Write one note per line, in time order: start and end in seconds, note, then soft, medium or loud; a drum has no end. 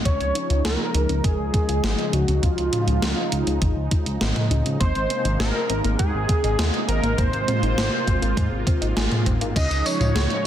0.05 0.17 C#2 loud
0.05 4.77 C#3 medium
0.05 4.77 F3 medium
0.05 4.77 G#3 medium
0.05 0.13 C#4 medium
0.05 7.14 D#4 medium
0.05 0.61 C#5 loud
0.05 kick loud
0.05 closed hi-hat medium
0.20 0.32 C#2 medium
0.20 closed hi-hat soft
0.35 0.42 D#4 medium
0.35 closed hi-hat medium
0.50 0.62 C#2 medium
0.50 0.62 F4 medium
0.50 closed hi-hat medium
0.65 0.77 C#2 loud
0.65 0.79 G#4 medium
0.65 1.26 A#4 loud
0.65 snare loud
0.65 closed hi-hat medium
0.95 1.06 C#2 loud
0.95 1.09 D#4 medium
0.95 closed hi-hat medium
1.09 1.21 C#2 medium
1.09 1.17 C#4 medium
1.09 closed hi-hat medium
1.24 1.36 G#1 loud
1.24 1.32 C#4 medium
1.24 2.15 G#4 loud
1.24 kick loud
1.24 closed hi-hat medium
1.39 1.51 C#2 medium
1.54 1.61 D#4 medium
1.54 kick loud
1.54 closed hi-hat medium
1.69 1.81 C#2 medium
1.69 1.81 F4 medium
1.69 closed hi-hat medium
1.83 1.96 G#1 loud
1.83 1.98 G#4 medium
1.83 snare loud
1.83 closed hi-hat medium
1.99 closed hi-hat soft
2.13 2.25 C#2 medium
2.13 2.27 D#4 medium
2.13 2.42 F#4 medium
2.13 closed hi-hat medium
2.28 2.40 C#2 medium
2.28 2.35 C#4 medium
2.28 closed hi-hat medium
2.43 2.55 C#2 loud
2.43 2.50 C#4 medium
2.43 4.17 F4 loud
2.43 kick loud
2.43 closed hi-hat medium
2.58 2.70 C#2 medium
2.58 closed hi-hat soft
2.73 2.80 D#4 medium
2.73 closed hi-hat medium
2.73 mid tom medium
2.87 2.99 C#2 medium
2.87 3.00 F4 medium
2.87 closed hi-hat medium
3.02 3.14 C#2 loud
3.02 3.16 G#4 medium
3.02 snare loud
3.02 closed hi-hat medium
3.32 3.44 C#2 medium
3.32 3.46 D#4 medium
3.32 closed hi-hat medium
3.47 3.59 C#2 medium
3.47 3.54 C#4 medium
3.47 closed hi-hat medium
3.62 3.74 G#1 loud
3.62 3.69 C#4 medium
3.62 kick loud
3.62 closed hi-hat medium
3.76 3.88 C#2 medium
3.91 3.99 D#4 medium
3.91 kick loud
3.91 closed hi-hat medium
4.06 4.18 C#2 medium
4.06 4.18 F4 medium
4.06 closed hi-hat medium
4.21 4.33 G#1 loud
4.21 4.35 G#4 medium
4.21 snare loud
4.21 closed hi-hat medium
4.36 snare soft
4.36 closed hi-hat soft
4.36 mid tom medium
4.51 4.63 C#2 loud
4.51 4.65 D#4 medium
4.51 closed hi-hat medium
4.65 4.78 C#2 medium
4.65 4.73 C#4 medium
4.65 closed hi-hat medium
4.80 4.93 G#1 loud
4.80 9.52 C3 medium
4.80 9.52 G#3 medium
4.80 4.88 A#3 medium
4.80 9.52 A#3 medium
4.80 5.36 C5 loud
4.80 kick loud
4.80 closed hi-hat medium
4.95 5.07 G#1 medium
4.95 closed hi-hat soft
5.10 5.18 C4 medium
5.10 closed hi-hat medium
5.25 5.37 G#1 medium
5.25 5.37 D#4 medium
5.25 closed hi-hat medium
5.40 5.52 G#1 loud
5.40 5.54 G#4 medium
5.40 5.95 A#4 loud
5.40 snare loud
5.40 closed hi-hat medium
5.70 5.82 G#1 loud
5.70 5.84 C4 medium
5.70 closed hi-hat medium
5.84 5.96 G#1 medium
5.84 5.92 A#3 medium
5.84 closed hi-hat medium
5.99 6.11 G#2 loud
5.99 6.07 A#3 medium
5.99 6.84 G#4 loud
5.99 kick loud
5.99 closed hi-hat medium
6.14 6.26 G#1 medium
6.29 6.37 C4 medium
6.29 kick loud
6.29 closed hi-hat medium
6.44 6.56 G#1 medium
6.44 6.56 D#4 medium
6.44 closed hi-hat medium
6.59 6.71 D#2 loud
6.59 6.73 G#4 medium
6.59 snare loud
6.59 closed hi-hat medium
6.74 closed hi-hat soft
6.88 7.00 G#1 loud
6.88 7.03 C4 medium
6.88 7.20 A#4 loud
6.88 closed hi-hat medium
7.03 7.15 G#1 medium
7.03 7.11 A#3 medium
7.03 closed hi-hat medium
7.18 7.30 G#1 loud
7.18 7.26 A#3 medium
7.18 9.54 F4 medium
7.18 8.96 C5 loud
7.18 kick loud
7.18 closed hi-hat medium
7.33 7.45 G#1 medium
7.33 closed hi-hat soft
7.48 7.55 C4 medium
7.48 closed hi-hat medium
7.48 mid tom medium
7.63 7.75 G#1 medium
7.63 7.75 D#4 medium
7.63 closed hi-hat medium
7.78 7.90 G#1 loud
7.78 7.92 G#4 medium
7.78 snare loud
7.78 closed hi-hat medium
8.07 8.19 G#1 loud
8.07 8.22 C4 medium
8.07 kick medium
8.07 closed hi-hat medium
8.22 8.34 G#1 medium
8.22 8.29 A#3 medium
8.22 closed hi-hat medium
8.37 8.49 G#2 loud
8.37 8.44 A#3 medium
8.37 kick loud
8.37 closed hi-hat medium
8.52 8.64 G#1 medium
8.67 8.74 C4 medium
8.67 kick loud
8.67 closed hi-hat medium
8.81 8.94 G#1 medium
8.81 8.94 D#4 medium
8.81 closed hi-hat medium
8.96 9.08 G#1 loud
8.96 9.11 G#4 medium
8.96 snare loud
8.96 closed hi-hat medium
9.12 snare soft
9.12 closed hi-hat soft
9.12 mid tom medium
9.26 9.38 G#1 medium
9.26 9.40 C4 medium
9.26 kick medium
9.26 closed hi-hat medium
9.41 9.53 G#1 medium
9.41 9.48 A#3 medium
9.41 closed hi-hat medium
9.56 9.68 C#2 loud
9.56 10.47 C#3 medium
9.56 10.47 F3 medium
9.56 10.47 G#3 medium
9.56 9.63 C#4 medium
9.56 10.47 D#4 medium
9.56 9.87 D#5 loud
9.56 kick loud
9.56 closed hi-hat medium
9.56 crash loud
9.56 tambourine soft
9.71 9.83 C#2 medium
9.71 closed hi-hat soft
9.71 tambourine soft
9.86 9.93 D#4 medium
9.86 10.47 C#5 loud
9.86 open hi-hat medium
9.86 tambourine medium
10.00 10.12 C#2 medium
10.00 10.13 F4 medium
10.00 closed hi-hat soft
10.00 mid tom medium
10.00 tambourine soft
10.15 10.27 C#2 loud
10.15 10.29 G#4 medium
10.15 snare loud
10.15 closed hi-hat medium
10.15 tambourine soft
10.30 closed hi-hat soft